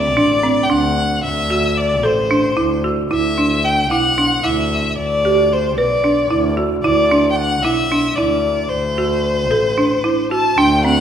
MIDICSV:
0, 0, Header, 1, 4, 480
1, 0, Start_track
1, 0, Tempo, 533808
1, 1114, Time_signature, 7, 3, 24, 8
1, 9894, End_track
2, 0, Start_track
2, 0, Title_t, "Violin"
2, 0, Program_c, 0, 40
2, 0, Note_on_c, 0, 74, 82
2, 569, Note_on_c, 0, 79, 59
2, 582, Note_off_c, 0, 74, 0
2, 639, Note_on_c, 0, 78, 73
2, 653, Note_off_c, 0, 79, 0
2, 1109, Note_off_c, 0, 78, 0
2, 1115, Note_on_c, 0, 76, 84
2, 1593, Note_on_c, 0, 74, 72
2, 1607, Note_off_c, 0, 76, 0
2, 1844, Note_on_c, 0, 72, 64
2, 1857, Note_off_c, 0, 74, 0
2, 2559, Note_off_c, 0, 72, 0
2, 2812, Note_on_c, 0, 76, 77
2, 3277, Note_on_c, 0, 79, 76
2, 3290, Note_off_c, 0, 76, 0
2, 3507, Note_off_c, 0, 79, 0
2, 3513, Note_on_c, 0, 78, 86
2, 3989, Note_on_c, 0, 76, 73
2, 4002, Note_off_c, 0, 78, 0
2, 4472, Note_off_c, 0, 76, 0
2, 4478, Note_on_c, 0, 74, 78
2, 4966, Note_on_c, 0, 72, 64
2, 4979, Note_off_c, 0, 74, 0
2, 5188, Note_off_c, 0, 72, 0
2, 5193, Note_on_c, 0, 74, 67
2, 5878, Note_off_c, 0, 74, 0
2, 6145, Note_on_c, 0, 74, 81
2, 6540, Note_off_c, 0, 74, 0
2, 6574, Note_on_c, 0, 79, 59
2, 6618, Note_on_c, 0, 78, 85
2, 6631, Note_off_c, 0, 79, 0
2, 6853, Note_on_c, 0, 76, 84
2, 6867, Note_off_c, 0, 78, 0
2, 7331, Note_on_c, 0, 74, 73
2, 7345, Note_off_c, 0, 76, 0
2, 7804, Note_on_c, 0, 72, 74
2, 7818, Note_off_c, 0, 74, 0
2, 9258, Note_off_c, 0, 72, 0
2, 9276, Note_on_c, 0, 81, 70
2, 9510, Note_on_c, 0, 79, 83
2, 9524, Note_off_c, 0, 81, 0
2, 9751, Note_off_c, 0, 79, 0
2, 9758, Note_on_c, 0, 78, 88
2, 9894, Note_off_c, 0, 78, 0
2, 9894, End_track
3, 0, Start_track
3, 0, Title_t, "Marimba"
3, 0, Program_c, 1, 12
3, 152, Note_on_c, 1, 62, 67
3, 341, Note_off_c, 1, 62, 0
3, 390, Note_on_c, 1, 60, 56
3, 580, Note_off_c, 1, 60, 0
3, 628, Note_on_c, 1, 62, 60
3, 1007, Note_off_c, 1, 62, 0
3, 1352, Note_on_c, 1, 66, 57
3, 1730, Note_off_c, 1, 66, 0
3, 1829, Note_on_c, 1, 69, 59
3, 2019, Note_off_c, 1, 69, 0
3, 2074, Note_on_c, 1, 62, 59
3, 2263, Note_off_c, 1, 62, 0
3, 2308, Note_on_c, 1, 64, 62
3, 2499, Note_off_c, 1, 64, 0
3, 2555, Note_on_c, 1, 66, 51
3, 2743, Note_off_c, 1, 66, 0
3, 2796, Note_on_c, 1, 64, 66
3, 2984, Note_off_c, 1, 64, 0
3, 3037, Note_on_c, 1, 62, 54
3, 3413, Note_off_c, 1, 62, 0
3, 3518, Note_on_c, 1, 64, 57
3, 3705, Note_off_c, 1, 64, 0
3, 3759, Note_on_c, 1, 62, 52
3, 3945, Note_off_c, 1, 62, 0
3, 3997, Note_on_c, 1, 64, 59
3, 4373, Note_off_c, 1, 64, 0
3, 4721, Note_on_c, 1, 67, 59
3, 5095, Note_off_c, 1, 67, 0
3, 5196, Note_on_c, 1, 71, 60
3, 5384, Note_off_c, 1, 71, 0
3, 5431, Note_on_c, 1, 62, 58
3, 5621, Note_off_c, 1, 62, 0
3, 5669, Note_on_c, 1, 64, 63
3, 5860, Note_off_c, 1, 64, 0
3, 5909, Note_on_c, 1, 66, 56
3, 6100, Note_off_c, 1, 66, 0
3, 6152, Note_on_c, 1, 64, 74
3, 6342, Note_off_c, 1, 64, 0
3, 6397, Note_on_c, 1, 62, 64
3, 6773, Note_off_c, 1, 62, 0
3, 6876, Note_on_c, 1, 64, 62
3, 7064, Note_off_c, 1, 64, 0
3, 7119, Note_on_c, 1, 62, 57
3, 7305, Note_off_c, 1, 62, 0
3, 7355, Note_on_c, 1, 64, 60
3, 7732, Note_off_c, 1, 64, 0
3, 8075, Note_on_c, 1, 66, 62
3, 8451, Note_off_c, 1, 66, 0
3, 8550, Note_on_c, 1, 69, 59
3, 8740, Note_off_c, 1, 69, 0
3, 8791, Note_on_c, 1, 62, 58
3, 8980, Note_off_c, 1, 62, 0
3, 9029, Note_on_c, 1, 64, 61
3, 9218, Note_off_c, 1, 64, 0
3, 9274, Note_on_c, 1, 66, 61
3, 9461, Note_off_c, 1, 66, 0
3, 9511, Note_on_c, 1, 62, 71
3, 9700, Note_off_c, 1, 62, 0
3, 9753, Note_on_c, 1, 60, 56
3, 9894, Note_off_c, 1, 60, 0
3, 9894, End_track
4, 0, Start_track
4, 0, Title_t, "Double bass"
4, 0, Program_c, 2, 43
4, 0, Note_on_c, 2, 38, 67
4, 153, Note_on_c, 2, 33, 69
4, 167, Note_off_c, 2, 38, 0
4, 562, Note_off_c, 2, 33, 0
4, 633, Note_on_c, 2, 38, 78
4, 1042, Note_off_c, 2, 38, 0
4, 1115, Note_on_c, 2, 38, 71
4, 1835, Note_on_c, 2, 33, 65
4, 1848, Note_off_c, 2, 38, 0
4, 2243, Note_off_c, 2, 33, 0
4, 2317, Note_on_c, 2, 38, 67
4, 2724, Note_off_c, 2, 38, 0
4, 2799, Note_on_c, 2, 38, 65
4, 3522, Note_on_c, 2, 35, 67
4, 3536, Note_off_c, 2, 38, 0
4, 3927, Note_off_c, 2, 35, 0
4, 4000, Note_on_c, 2, 38, 70
4, 4406, Note_off_c, 2, 38, 0
4, 4480, Note_on_c, 2, 38, 71
4, 5195, Note_on_c, 2, 35, 64
4, 5208, Note_off_c, 2, 38, 0
4, 5603, Note_off_c, 2, 35, 0
4, 5671, Note_on_c, 2, 38, 76
4, 6081, Note_off_c, 2, 38, 0
4, 6155, Note_on_c, 2, 38, 71
4, 6873, Note_on_c, 2, 35, 66
4, 6886, Note_off_c, 2, 38, 0
4, 7282, Note_off_c, 2, 35, 0
4, 7350, Note_on_c, 2, 38, 65
4, 7760, Note_off_c, 2, 38, 0
4, 7837, Note_on_c, 2, 38, 69
4, 8554, Note_on_c, 2, 33, 62
4, 8567, Note_off_c, 2, 38, 0
4, 8961, Note_off_c, 2, 33, 0
4, 9510, Note_on_c, 2, 38, 77
4, 9894, Note_off_c, 2, 38, 0
4, 9894, End_track
0, 0, End_of_file